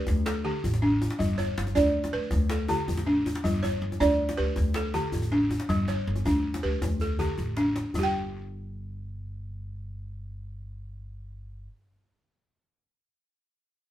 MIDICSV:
0, 0, Header, 1, 4, 480
1, 0, Start_track
1, 0, Tempo, 375469
1, 1526, Time_signature, 12, 3, 24, 8
1, 17775, End_track
2, 0, Start_track
2, 0, Title_t, "Balafon"
2, 0, Program_c, 0, 12
2, 0, Note_on_c, 0, 67, 67
2, 328, Note_off_c, 0, 67, 0
2, 331, Note_on_c, 0, 69, 69
2, 570, Note_on_c, 0, 67, 71
2, 572, Note_on_c, 0, 50, 71
2, 1048, Note_off_c, 0, 69, 0
2, 1049, Note_off_c, 0, 50, 0
2, 1050, Note_on_c, 0, 62, 82
2, 1287, Note_off_c, 0, 67, 0
2, 1519, Note_on_c, 0, 55, 84
2, 1528, Note_off_c, 0, 62, 0
2, 1762, Note_on_c, 0, 73, 73
2, 2002, Note_off_c, 0, 55, 0
2, 2240, Note_on_c, 0, 74, 72
2, 2242, Note_on_c, 0, 62, 85
2, 2482, Note_off_c, 0, 73, 0
2, 2722, Note_off_c, 0, 62, 0
2, 2724, Note_on_c, 0, 71, 80
2, 2961, Note_off_c, 0, 74, 0
2, 2963, Note_off_c, 0, 71, 0
2, 3203, Note_on_c, 0, 69, 67
2, 3440, Note_on_c, 0, 67, 66
2, 3441, Note_on_c, 0, 50, 81
2, 3919, Note_on_c, 0, 62, 84
2, 3921, Note_off_c, 0, 50, 0
2, 3922, Note_off_c, 0, 69, 0
2, 4160, Note_off_c, 0, 67, 0
2, 4397, Note_on_c, 0, 55, 95
2, 4399, Note_off_c, 0, 62, 0
2, 4637, Note_on_c, 0, 73, 75
2, 4878, Note_off_c, 0, 55, 0
2, 5117, Note_on_c, 0, 62, 83
2, 5121, Note_on_c, 0, 74, 76
2, 5358, Note_off_c, 0, 73, 0
2, 5591, Note_on_c, 0, 67, 66
2, 5594, Note_on_c, 0, 71, 85
2, 5598, Note_off_c, 0, 62, 0
2, 5836, Note_off_c, 0, 71, 0
2, 5840, Note_off_c, 0, 74, 0
2, 6075, Note_off_c, 0, 67, 0
2, 6081, Note_on_c, 0, 69, 75
2, 6317, Note_on_c, 0, 50, 76
2, 6317, Note_on_c, 0, 67, 65
2, 6798, Note_off_c, 0, 50, 0
2, 6798, Note_on_c, 0, 62, 85
2, 6799, Note_off_c, 0, 69, 0
2, 7037, Note_off_c, 0, 67, 0
2, 7274, Note_on_c, 0, 55, 94
2, 7278, Note_off_c, 0, 62, 0
2, 7520, Note_on_c, 0, 73, 72
2, 7756, Note_off_c, 0, 55, 0
2, 7999, Note_on_c, 0, 62, 77
2, 8239, Note_off_c, 0, 73, 0
2, 8477, Note_on_c, 0, 71, 72
2, 8478, Note_off_c, 0, 62, 0
2, 8479, Note_on_c, 0, 67, 60
2, 8718, Note_off_c, 0, 71, 0
2, 8959, Note_off_c, 0, 67, 0
2, 8964, Note_on_c, 0, 69, 64
2, 9193, Note_on_c, 0, 50, 76
2, 9198, Note_on_c, 0, 67, 67
2, 9676, Note_off_c, 0, 50, 0
2, 9679, Note_on_c, 0, 62, 77
2, 9681, Note_off_c, 0, 69, 0
2, 9918, Note_off_c, 0, 67, 0
2, 10159, Note_off_c, 0, 62, 0
2, 10166, Note_on_c, 0, 55, 75
2, 10214, Note_on_c, 0, 67, 77
2, 10268, Note_on_c, 0, 79, 82
2, 14963, Note_off_c, 0, 55, 0
2, 14986, Note_off_c, 0, 67, 0
2, 15013, Note_off_c, 0, 79, 0
2, 17775, End_track
3, 0, Start_track
3, 0, Title_t, "Upright bass"
3, 0, Program_c, 1, 32
3, 101, Note_on_c, 1, 38, 99
3, 641, Note_off_c, 1, 38, 0
3, 818, Note_on_c, 1, 33, 88
3, 1359, Note_off_c, 1, 33, 0
3, 1534, Note_on_c, 1, 31, 101
3, 1894, Note_off_c, 1, 31, 0
3, 2017, Note_on_c, 1, 31, 94
3, 2194, Note_off_c, 1, 31, 0
3, 2249, Note_on_c, 1, 38, 97
3, 2611, Note_off_c, 1, 38, 0
3, 2727, Note_on_c, 1, 38, 81
3, 2907, Note_off_c, 1, 38, 0
3, 2962, Note_on_c, 1, 38, 96
3, 3508, Note_off_c, 1, 38, 0
3, 3690, Note_on_c, 1, 33, 85
3, 4232, Note_off_c, 1, 33, 0
3, 4414, Note_on_c, 1, 31, 99
3, 4773, Note_off_c, 1, 31, 0
3, 4880, Note_on_c, 1, 31, 90
3, 5062, Note_off_c, 1, 31, 0
3, 5124, Note_on_c, 1, 38, 92
3, 5486, Note_off_c, 1, 38, 0
3, 5611, Note_on_c, 1, 38, 87
3, 5788, Note_off_c, 1, 38, 0
3, 5844, Note_on_c, 1, 38, 97
3, 6388, Note_off_c, 1, 38, 0
3, 6572, Note_on_c, 1, 33, 89
3, 7113, Note_off_c, 1, 33, 0
3, 7283, Note_on_c, 1, 31, 103
3, 7645, Note_off_c, 1, 31, 0
3, 7765, Note_on_c, 1, 31, 95
3, 7944, Note_off_c, 1, 31, 0
3, 8008, Note_on_c, 1, 38, 93
3, 8368, Note_off_c, 1, 38, 0
3, 8490, Note_on_c, 1, 38, 86
3, 8668, Note_off_c, 1, 38, 0
3, 8733, Note_on_c, 1, 38, 98
3, 9274, Note_off_c, 1, 38, 0
3, 9441, Note_on_c, 1, 33, 88
3, 9986, Note_off_c, 1, 33, 0
3, 10166, Note_on_c, 1, 31, 87
3, 14911, Note_off_c, 1, 31, 0
3, 17775, End_track
4, 0, Start_track
4, 0, Title_t, "Djembe"
4, 85, Note_on_c, 9, 62, 23
4, 85, Note_on_c, 9, 63, 71
4, 85, Note_on_c, 9, 64, 76
4, 212, Note_off_c, 9, 62, 0
4, 212, Note_off_c, 9, 63, 0
4, 212, Note_off_c, 9, 64, 0
4, 334, Note_on_c, 9, 62, 74
4, 462, Note_off_c, 9, 62, 0
4, 819, Note_on_c, 9, 64, 67
4, 940, Note_on_c, 9, 62, 51
4, 940, Note_on_c, 9, 63, 52
4, 947, Note_off_c, 9, 64, 0
4, 1059, Note_off_c, 9, 62, 0
4, 1059, Note_on_c, 9, 62, 23
4, 1068, Note_off_c, 9, 63, 0
4, 1187, Note_off_c, 9, 62, 0
4, 1297, Note_on_c, 9, 63, 66
4, 1412, Note_on_c, 9, 62, 57
4, 1425, Note_off_c, 9, 63, 0
4, 1534, Note_on_c, 9, 64, 67
4, 1540, Note_off_c, 9, 62, 0
4, 1662, Note_off_c, 9, 64, 0
4, 1775, Note_on_c, 9, 63, 65
4, 1903, Note_off_c, 9, 63, 0
4, 2015, Note_on_c, 9, 62, 70
4, 2133, Note_off_c, 9, 62, 0
4, 2133, Note_on_c, 9, 62, 25
4, 2133, Note_on_c, 9, 63, 60
4, 2244, Note_on_c, 9, 64, 75
4, 2261, Note_off_c, 9, 62, 0
4, 2261, Note_off_c, 9, 63, 0
4, 2372, Note_off_c, 9, 64, 0
4, 2605, Note_on_c, 9, 62, 56
4, 2605, Note_on_c, 9, 63, 59
4, 2732, Note_off_c, 9, 62, 0
4, 2732, Note_off_c, 9, 63, 0
4, 2949, Note_on_c, 9, 62, 24
4, 2949, Note_on_c, 9, 63, 81
4, 2949, Note_on_c, 9, 64, 77
4, 3076, Note_off_c, 9, 62, 0
4, 3076, Note_off_c, 9, 63, 0
4, 3076, Note_off_c, 9, 64, 0
4, 3189, Note_on_c, 9, 62, 77
4, 3317, Note_off_c, 9, 62, 0
4, 3431, Note_on_c, 9, 63, 79
4, 3559, Note_off_c, 9, 63, 0
4, 3682, Note_on_c, 9, 64, 74
4, 3802, Note_on_c, 9, 62, 55
4, 3802, Note_on_c, 9, 63, 55
4, 3810, Note_off_c, 9, 64, 0
4, 3928, Note_off_c, 9, 62, 0
4, 3928, Note_on_c, 9, 62, 25
4, 3930, Note_off_c, 9, 63, 0
4, 4056, Note_off_c, 9, 62, 0
4, 4168, Note_on_c, 9, 63, 73
4, 4288, Note_on_c, 9, 62, 64
4, 4296, Note_off_c, 9, 63, 0
4, 4407, Note_on_c, 9, 64, 74
4, 4415, Note_off_c, 9, 62, 0
4, 4535, Note_off_c, 9, 64, 0
4, 4649, Note_on_c, 9, 63, 73
4, 4777, Note_off_c, 9, 63, 0
4, 5013, Note_on_c, 9, 62, 25
4, 5013, Note_on_c, 9, 63, 62
4, 5126, Note_on_c, 9, 64, 73
4, 5141, Note_off_c, 9, 62, 0
4, 5141, Note_off_c, 9, 63, 0
4, 5254, Note_off_c, 9, 64, 0
4, 5482, Note_on_c, 9, 62, 55
4, 5482, Note_on_c, 9, 63, 59
4, 5610, Note_off_c, 9, 62, 0
4, 5610, Note_off_c, 9, 63, 0
4, 5829, Note_on_c, 9, 62, 24
4, 5829, Note_on_c, 9, 63, 77
4, 5829, Note_on_c, 9, 64, 77
4, 5957, Note_off_c, 9, 62, 0
4, 5957, Note_off_c, 9, 63, 0
4, 5957, Note_off_c, 9, 64, 0
4, 6063, Note_on_c, 9, 62, 76
4, 6191, Note_off_c, 9, 62, 0
4, 6313, Note_on_c, 9, 63, 76
4, 6441, Note_off_c, 9, 63, 0
4, 6549, Note_on_c, 9, 64, 69
4, 6672, Note_on_c, 9, 63, 51
4, 6677, Note_off_c, 9, 64, 0
4, 6799, Note_on_c, 9, 62, 24
4, 6800, Note_off_c, 9, 63, 0
4, 6927, Note_off_c, 9, 62, 0
4, 7037, Note_on_c, 9, 63, 67
4, 7154, Note_on_c, 9, 62, 61
4, 7165, Note_off_c, 9, 63, 0
4, 7278, Note_off_c, 9, 62, 0
4, 7278, Note_on_c, 9, 62, 24
4, 7278, Note_on_c, 9, 64, 79
4, 7392, Note_off_c, 9, 62, 0
4, 7392, Note_on_c, 9, 62, 23
4, 7406, Note_off_c, 9, 64, 0
4, 7514, Note_off_c, 9, 62, 0
4, 7514, Note_on_c, 9, 62, 25
4, 7514, Note_on_c, 9, 63, 73
4, 7642, Note_off_c, 9, 62, 0
4, 7642, Note_off_c, 9, 63, 0
4, 7870, Note_on_c, 9, 62, 22
4, 7870, Note_on_c, 9, 63, 55
4, 7995, Note_on_c, 9, 64, 66
4, 7997, Note_off_c, 9, 62, 0
4, 7997, Note_off_c, 9, 63, 0
4, 8123, Note_off_c, 9, 64, 0
4, 8363, Note_on_c, 9, 62, 58
4, 8363, Note_on_c, 9, 63, 60
4, 8490, Note_off_c, 9, 62, 0
4, 8490, Note_off_c, 9, 63, 0
4, 8716, Note_on_c, 9, 62, 23
4, 8716, Note_on_c, 9, 63, 77
4, 8716, Note_on_c, 9, 64, 72
4, 8833, Note_off_c, 9, 62, 0
4, 8833, Note_on_c, 9, 62, 23
4, 8844, Note_off_c, 9, 63, 0
4, 8844, Note_off_c, 9, 64, 0
4, 8945, Note_on_c, 9, 64, 45
4, 8961, Note_off_c, 9, 62, 0
4, 9073, Note_off_c, 9, 64, 0
4, 9188, Note_on_c, 9, 64, 50
4, 9316, Note_off_c, 9, 64, 0
4, 9428, Note_on_c, 9, 64, 45
4, 9556, Note_off_c, 9, 64, 0
4, 9673, Note_on_c, 9, 62, 55
4, 9801, Note_off_c, 9, 62, 0
4, 9917, Note_on_c, 9, 62, 58
4, 10045, Note_off_c, 9, 62, 0
4, 10152, Note_on_c, 9, 64, 77
4, 10280, Note_off_c, 9, 64, 0
4, 17775, End_track
0, 0, End_of_file